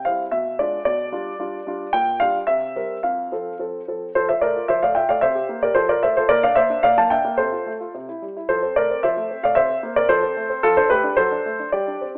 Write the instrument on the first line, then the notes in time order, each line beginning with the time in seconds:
grand piano
0.05 G3 C4 E4 F5
0.31 B2 E5
0.59 G#3 D4 F4 D5
0.85 B2 D5
1.12 G3 D4 F4
1.39 G3 D4 F4
1.67 G3 D4 F4
1.93 A#2 G5
2.20 G3 D4 F4 F5
2.47 C3 E5
2.76 G3 C4 A#4
3.03 F2 F5
3.32 F3 C4 A4
3.59 F3 C4 A4
3.88 F3 C4 A4
4.15 F3 A4 C5
4.29 F4 C5 E5
4.41 A3 A#4 D5
4.56 F4
4.68 F3 C5 E5
4.82 A3 D5 F5
4.95 F4 E5 G5
5.09 A3 D5 F5
5.21 C3 C5 E5
5.35 G4
5.49 A#3
5.62 G4 A#4 D5
5.75 F3 A4 C5
5.89 F4 A#4 D5
6.03 A3 C5 E5
6.17 F4 A4 C5
6.29 A#3 A#4 D5
6.43 D4 D5 F5
6.55 A#3 C5 E5
6.70 D4
6.83 A#3 D5 F5
6.98 A#3 F5 A5
7.10 D4 E5 G5
7.25 A#3
7.37 C3 A4 C5
7.52 F4
7.66 A3
7.80 F4
7.95 C3
8.09 E4
8.22 G3
8.37 E4
8.49 F3 A4 C5
8.62 C4
8.76 A3 A#4 D5
8.91 C4
9.03 F3 C5 E5
9.17 A3
9.30 C4
9.43 A3 D5 F5
9.55 C3 C5 E5
9.70 C4
9.83 A#3
9.96 C4 A#4 D5
10.09 F3 A4 C5
10.23 C4
10.37 A3
10.50 C4
10.63 F3 F4 A4
10.77 D4 A4 C5
10.90 A3 G4 B4
11.04 D4
11.17 F#3 A4 C5
11.31 D4
11.46 A3
11.59 D4
11.72 G3 G4 D5
11.88 D4
12.01 C4